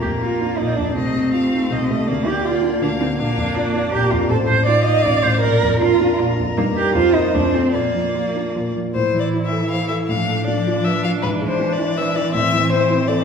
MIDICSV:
0, 0, Header, 1, 5, 480
1, 0, Start_track
1, 0, Key_signature, -2, "major"
1, 0, Tempo, 378072
1, 1234, Time_signature, 3, 2, 24, 8
1, 2188, Tempo, 368777
1, 6028, Tempo, 379747
1, 8908, Tempo, 396825
1, 11322, Key_signature, 0, "minor"
1, 11788, Tempo, 374766
1, 16793, End_track
2, 0, Start_track
2, 0, Title_t, "Violin"
2, 0, Program_c, 0, 40
2, 0, Note_on_c, 0, 70, 47
2, 730, Note_on_c, 0, 74, 43
2, 749, Note_off_c, 0, 70, 0
2, 1223, Note_off_c, 0, 74, 0
2, 1231, Note_on_c, 0, 75, 50
2, 1692, Note_off_c, 0, 75, 0
2, 1699, Note_on_c, 0, 77, 45
2, 2185, Note_on_c, 0, 75, 40
2, 2204, Note_off_c, 0, 77, 0
2, 2649, Note_on_c, 0, 74, 50
2, 2669, Note_off_c, 0, 75, 0
2, 3624, Note_on_c, 0, 77, 45
2, 3644, Note_off_c, 0, 74, 0
2, 4074, Note_off_c, 0, 77, 0
2, 4082, Note_on_c, 0, 77, 59
2, 4566, Note_on_c, 0, 74, 52
2, 4586, Note_off_c, 0, 77, 0
2, 5044, Note_on_c, 0, 70, 45
2, 5064, Note_off_c, 0, 74, 0
2, 5529, Note_on_c, 0, 72, 53
2, 5549, Note_off_c, 0, 70, 0
2, 6015, Note_on_c, 0, 77, 61
2, 6035, Note_off_c, 0, 72, 0
2, 6964, Note_off_c, 0, 77, 0
2, 6971, Note_on_c, 0, 74, 63
2, 7449, Note_off_c, 0, 74, 0
2, 7462, Note_on_c, 0, 70, 58
2, 8916, Note_on_c, 0, 72, 57
2, 8934, Note_off_c, 0, 70, 0
2, 9843, Note_off_c, 0, 72, 0
2, 9851, Note_on_c, 0, 74, 48
2, 11051, Note_off_c, 0, 74, 0
2, 11317, Note_on_c, 0, 72, 58
2, 11609, Note_off_c, 0, 72, 0
2, 11629, Note_on_c, 0, 74, 44
2, 11726, Note_off_c, 0, 74, 0
2, 11945, Note_on_c, 0, 76, 50
2, 12259, Note_off_c, 0, 76, 0
2, 12267, Note_on_c, 0, 77, 57
2, 12487, Note_off_c, 0, 77, 0
2, 12494, Note_on_c, 0, 76, 52
2, 12596, Note_off_c, 0, 76, 0
2, 12742, Note_on_c, 0, 77, 62
2, 13227, Note_off_c, 0, 77, 0
2, 13235, Note_on_c, 0, 74, 59
2, 13721, Note_on_c, 0, 76, 66
2, 13740, Note_off_c, 0, 74, 0
2, 13965, Note_off_c, 0, 76, 0
2, 13972, Note_on_c, 0, 77, 56
2, 14069, Note_off_c, 0, 77, 0
2, 14210, Note_on_c, 0, 71, 72
2, 14312, Note_off_c, 0, 71, 0
2, 14537, Note_on_c, 0, 72, 59
2, 14857, Note_on_c, 0, 74, 63
2, 14876, Note_off_c, 0, 72, 0
2, 15173, Note_on_c, 0, 76, 64
2, 15192, Note_off_c, 0, 74, 0
2, 15409, Note_on_c, 0, 74, 73
2, 15428, Note_off_c, 0, 76, 0
2, 15633, Note_off_c, 0, 74, 0
2, 15641, Note_on_c, 0, 76, 82
2, 16105, Note_off_c, 0, 76, 0
2, 16126, Note_on_c, 0, 72, 72
2, 16584, Note_on_c, 0, 74, 69
2, 16604, Note_off_c, 0, 72, 0
2, 16793, Note_off_c, 0, 74, 0
2, 16793, End_track
3, 0, Start_track
3, 0, Title_t, "Cello"
3, 0, Program_c, 1, 42
3, 12, Note_on_c, 1, 67, 51
3, 112, Note_off_c, 1, 67, 0
3, 261, Note_on_c, 1, 65, 47
3, 732, Note_on_c, 1, 63, 48
3, 751, Note_off_c, 1, 65, 0
3, 971, Note_on_c, 1, 62, 53
3, 991, Note_off_c, 1, 63, 0
3, 1199, Note_off_c, 1, 62, 0
3, 1207, Note_on_c, 1, 60, 54
3, 2416, Note_on_c, 1, 57, 52
3, 2436, Note_off_c, 1, 60, 0
3, 2658, Note_on_c, 1, 58, 57
3, 2677, Note_off_c, 1, 57, 0
3, 2891, Note_on_c, 1, 67, 53
3, 2910, Note_off_c, 1, 58, 0
3, 3128, Note_on_c, 1, 65, 47
3, 3148, Note_off_c, 1, 67, 0
3, 3611, Note_off_c, 1, 65, 0
3, 3619, Note_on_c, 1, 62, 50
3, 3716, Note_off_c, 1, 62, 0
3, 3848, Note_on_c, 1, 60, 54
3, 3947, Note_off_c, 1, 60, 0
3, 4097, Note_on_c, 1, 58, 61
3, 5040, Note_off_c, 1, 58, 0
3, 5056, Note_on_c, 1, 67, 64
3, 5291, Note_on_c, 1, 65, 55
3, 5311, Note_off_c, 1, 67, 0
3, 5522, Note_off_c, 1, 65, 0
3, 5530, Note_on_c, 1, 69, 68
3, 5629, Note_off_c, 1, 69, 0
3, 5775, Note_on_c, 1, 72, 64
3, 6007, Note_off_c, 1, 72, 0
3, 6015, Note_on_c, 1, 74, 73
3, 6243, Note_off_c, 1, 74, 0
3, 6251, Note_on_c, 1, 75, 62
3, 6472, Note_on_c, 1, 74, 67
3, 6491, Note_off_c, 1, 75, 0
3, 6727, Note_on_c, 1, 72, 69
3, 6746, Note_off_c, 1, 74, 0
3, 6953, Note_off_c, 1, 72, 0
3, 6961, Note_on_c, 1, 70, 68
3, 7444, Note_off_c, 1, 70, 0
3, 7455, Note_on_c, 1, 65, 67
3, 7932, Note_off_c, 1, 65, 0
3, 8429, Note_on_c, 1, 58, 64
3, 8524, Note_off_c, 1, 58, 0
3, 8675, Note_on_c, 1, 67, 66
3, 8907, Note_off_c, 1, 67, 0
3, 8915, Note_on_c, 1, 65, 73
3, 9138, Note_on_c, 1, 63, 61
3, 9156, Note_off_c, 1, 65, 0
3, 9379, Note_on_c, 1, 62, 62
3, 9397, Note_off_c, 1, 63, 0
3, 9629, Note_on_c, 1, 60, 55
3, 9647, Note_off_c, 1, 62, 0
3, 9874, Note_on_c, 1, 58, 52
3, 9892, Note_off_c, 1, 60, 0
3, 11088, Note_off_c, 1, 58, 0
3, 11334, Note_on_c, 1, 52, 36
3, 12766, Note_on_c, 1, 53, 43
3, 12785, Note_off_c, 1, 52, 0
3, 14220, Note_off_c, 1, 53, 0
3, 14234, Note_on_c, 1, 52, 52
3, 16793, Note_off_c, 1, 52, 0
3, 16793, End_track
4, 0, Start_track
4, 0, Title_t, "Viola"
4, 0, Program_c, 2, 41
4, 0, Note_on_c, 2, 58, 34
4, 1235, Note_on_c, 2, 57, 36
4, 1254, Note_off_c, 2, 58, 0
4, 2653, Note_off_c, 2, 57, 0
4, 2660, Note_on_c, 2, 58, 41
4, 4096, Note_on_c, 2, 62, 42
4, 4115, Note_off_c, 2, 58, 0
4, 5541, Note_off_c, 2, 62, 0
4, 6021, Note_on_c, 2, 63, 47
4, 6380, Note_off_c, 2, 63, 0
4, 6502, Note_on_c, 2, 63, 54
4, 6863, Note_off_c, 2, 63, 0
4, 7464, Note_on_c, 2, 62, 47
4, 7823, Note_off_c, 2, 62, 0
4, 7944, Note_on_c, 2, 62, 54
4, 8302, Note_off_c, 2, 62, 0
4, 8431, Note_on_c, 2, 63, 50
4, 8786, Note_off_c, 2, 63, 0
4, 8914, Note_on_c, 2, 62, 46
4, 9260, Note_off_c, 2, 62, 0
4, 9388, Note_on_c, 2, 57, 51
4, 9742, Note_off_c, 2, 57, 0
4, 10359, Note_on_c, 2, 53, 42
4, 10717, Note_off_c, 2, 53, 0
4, 10849, Note_on_c, 2, 53, 41
4, 11206, Note_off_c, 2, 53, 0
4, 11321, Note_on_c, 2, 64, 36
4, 12760, Note_on_c, 2, 62, 44
4, 12779, Note_off_c, 2, 64, 0
4, 15638, Note_off_c, 2, 62, 0
4, 15645, Note_on_c, 2, 60, 50
4, 16793, Note_off_c, 2, 60, 0
4, 16793, End_track
5, 0, Start_track
5, 0, Title_t, "Grand piano"
5, 0, Program_c, 3, 0
5, 0, Control_c, 3, 64, 127
5, 0, Note_on_c, 3, 34, 39
5, 37, Note_on_c, 3, 41, 28
5, 276, Note_on_c, 3, 65, 30
5, 419, Note_off_c, 3, 41, 0
5, 517, Note_on_c, 3, 62, 28
5, 659, Note_off_c, 3, 65, 0
5, 735, Note_off_c, 3, 34, 0
5, 754, Note_on_c, 3, 34, 34
5, 900, Note_off_c, 3, 62, 0
5, 989, Note_on_c, 3, 41, 28
5, 1209, Note_on_c, 3, 36, 38
5, 1220, Note_off_c, 3, 34, 0
5, 1232, Note_off_c, 3, 41, 0
5, 1256, Control_c, 3, 64, 0
5, 1451, Note_on_c, 3, 48, 30
5, 1465, Control_c, 3, 64, 127
5, 1703, Note_on_c, 3, 65, 30
5, 1843, Note_off_c, 3, 48, 0
5, 1934, Note_on_c, 3, 63, 32
5, 2088, Note_off_c, 3, 65, 0
5, 2145, Note_off_c, 3, 36, 0
5, 2164, Note_on_c, 3, 36, 39
5, 2324, Note_off_c, 3, 63, 0
5, 2406, Note_on_c, 3, 48, 29
5, 2638, Note_off_c, 3, 36, 0
5, 2653, Note_on_c, 3, 38, 39
5, 2654, Note_off_c, 3, 48, 0
5, 2691, Control_c, 3, 64, 0
5, 2873, Control_c, 3, 64, 127
5, 2891, Note_on_c, 3, 50, 33
5, 3128, Note_on_c, 3, 65, 33
5, 3280, Note_off_c, 3, 50, 0
5, 3362, Note_on_c, 3, 62, 35
5, 3522, Note_off_c, 3, 65, 0
5, 3586, Note_off_c, 3, 38, 0
5, 3606, Note_on_c, 3, 38, 41
5, 3759, Note_off_c, 3, 62, 0
5, 3856, Note_on_c, 3, 50, 30
5, 4079, Note_off_c, 3, 38, 0
5, 4099, Note_off_c, 3, 50, 0
5, 4107, Note_on_c, 3, 34, 38
5, 4125, Control_c, 3, 64, 0
5, 4320, Control_c, 3, 64, 127
5, 4335, Note_on_c, 3, 41, 36
5, 4579, Note_on_c, 3, 65, 35
5, 4721, Note_off_c, 3, 41, 0
5, 4811, Note_on_c, 3, 62, 37
5, 4965, Note_off_c, 3, 65, 0
5, 5042, Note_off_c, 3, 34, 0
5, 5062, Note_on_c, 3, 34, 44
5, 5203, Note_off_c, 3, 62, 0
5, 5300, Note_on_c, 3, 41, 33
5, 5530, Note_off_c, 3, 34, 0
5, 5532, Note_on_c, 3, 33, 43
5, 5543, Note_off_c, 3, 41, 0
5, 5568, Control_c, 3, 64, 0
5, 5773, Note_on_c, 3, 45, 35
5, 5775, Control_c, 3, 64, 127
5, 6022, Note_on_c, 3, 65, 37
5, 6164, Note_off_c, 3, 45, 0
5, 6256, Note_on_c, 3, 63, 36
5, 6408, Note_off_c, 3, 65, 0
5, 6486, Note_off_c, 3, 33, 0
5, 6505, Note_on_c, 3, 33, 45
5, 6648, Note_off_c, 3, 63, 0
5, 6751, Note_on_c, 3, 45, 33
5, 6973, Note_off_c, 3, 33, 0
5, 6986, Note_on_c, 3, 34, 50
5, 6990, Note_off_c, 3, 45, 0
5, 7015, Control_c, 3, 64, 0
5, 7233, Note_on_c, 3, 41, 41
5, 7235, Control_c, 3, 64, 127
5, 7470, Note_on_c, 3, 65, 41
5, 7614, Note_off_c, 3, 41, 0
5, 7707, Note_on_c, 3, 62, 44
5, 7853, Note_off_c, 3, 65, 0
5, 7945, Note_off_c, 3, 34, 0
5, 7964, Note_on_c, 3, 34, 43
5, 8091, Note_off_c, 3, 62, 0
5, 8206, Note_on_c, 3, 41, 35
5, 8421, Note_off_c, 3, 34, 0
5, 8436, Note_off_c, 3, 41, 0
5, 8438, Note_on_c, 3, 43, 50
5, 8454, Control_c, 3, 64, 0
5, 8629, Control_c, 3, 64, 127
5, 8676, Note_on_c, 3, 63, 37
5, 8677, Note_on_c, 3, 70, 40
5, 8888, Note_off_c, 3, 63, 0
5, 8889, Note_off_c, 3, 70, 0
5, 8899, Note_off_c, 3, 43, 0
5, 8899, Note_on_c, 3, 41, 49
5, 8930, Control_c, 3, 64, 0
5, 9121, Control_c, 3, 64, 127
5, 9141, Note_on_c, 3, 65, 36
5, 9146, Note_on_c, 3, 70, 39
5, 9354, Note_off_c, 3, 65, 0
5, 9357, Note_off_c, 3, 70, 0
5, 9360, Note_off_c, 3, 41, 0
5, 9379, Note_on_c, 3, 41, 52
5, 9404, Control_c, 3, 64, 0
5, 9598, Control_c, 3, 64, 127
5, 9615, Note_on_c, 3, 65, 28
5, 9625, Note_on_c, 3, 69, 33
5, 9835, Note_off_c, 3, 65, 0
5, 9841, Note_off_c, 3, 69, 0
5, 9847, Note_off_c, 3, 41, 0
5, 9862, Note_on_c, 3, 46, 37
5, 9888, Control_c, 3, 64, 0
5, 10109, Note_on_c, 3, 53, 29
5, 10125, Control_c, 3, 64, 127
5, 10353, Note_on_c, 3, 65, 36
5, 10499, Note_off_c, 3, 53, 0
5, 10597, Note_on_c, 3, 62, 32
5, 10741, Note_off_c, 3, 65, 0
5, 10840, Note_off_c, 3, 46, 0
5, 10858, Note_on_c, 3, 46, 39
5, 10984, Note_off_c, 3, 62, 0
5, 11092, Note_on_c, 3, 53, 25
5, 11318, Note_off_c, 3, 46, 0
5, 11326, Note_on_c, 3, 45, 38
5, 11327, Note_off_c, 3, 53, 0
5, 11347, Control_c, 3, 64, 0
5, 11547, Control_c, 3, 64, 127
5, 11559, Note_on_c, 3, 52, 29
5, 11789, Note_on_c, 3, 64, 32
5, 11936, Note_off_c, 3, 52, 0
5, 12032, Note_on_c, 3, 69, 33
5, 12177, Note_off_c, 3, 64, 0
5, 12280, Note_on_c, 3, 72, 33
5, 12419, Note_off_c, 3, 69, 0
5, 12503, Note_on_c, 3, 69, 33
5, 12664, Note_off_c, 3, 72, 0
5, 12717, Note_off_c, 3, 45, 0
5, 12752, Note_off_c, 3, 69, 0
5, 12754, Note_on_c, 3, 45, 44
5, 12783, Control_c, 3, 64, 0
5, 12976, Control_c, 3, 64, 127
5, 13007, Note_on_c, 3, 57, 31
5, 13254, Note_on_c, 3, 62, 35
5, 13399, Note_off_c, 3, 57, 0
5, 13502, Note_on_c, 3, 65, 40
5, 13644, Note_off_c, 3, 62, 0
5, 13746, Note_on_c, 3, 71, 42
5, 13886, Note_off_c, 3, 65, 0
5, 13977, Note_on_c, 3, 65, 36
5, 14125, Note_off_c, 3, 71, 0
5, 14171, Note_off_c, 3, 45, 0
5, 14216, Note_off_c, 3, 65, 0
5, 14222, Note_on_c, 3, 44, 47
5, 14239, Control_c, 3, 64, 0
5, 14415, Control_c, 3, 64, 127
5, 14450, Note_on_c, 3, 56, 38
5, 14690, Note_on_c, 3, 62, 39
5, 14838, Note_off_c, 3, 56, 0
5, 14932, Note_on_c, 3, 64, 40
5, 15076, Note_off_c, 3, 62, 0
5, 15177, Note_on_c, 3, 71, 45
5, 15313, Note_off_c, 3, 64, 0
5, 15408, Note_on_c, 3, 64, 41
5, 15552, Note_off_c, 3, 71, 0
5, 15605, Note_off_c, 3, 44, 0
5, 15639, Note_on_c, 3, 45, 48
5, 15644, Note_off_c, 3, 64, 0
5, 15671, Control_c, 3, 64, 0
5, 15850, Control_c, 3, 64, 127
5, 15885, Note_on_c, 3, 52, 40
5, 16123, Note_on_c, 3, 60, 44
5, 16261, Note_off_c, 3, 52, 0
5, 16355, Note_on_c, 3, 64, 46
5, 16499, Note_off_c, 3, 60, 0
5, 16598, Note_on_c, 3, 69, 48
5, 16734, Note_off_c, 3, 64, 0
5, 16793, Note_off_c, 3, 45, 0
5, 16793, Note_off_c, 3, 69, 0
5, 16793, End_track
0, 0, End_of_file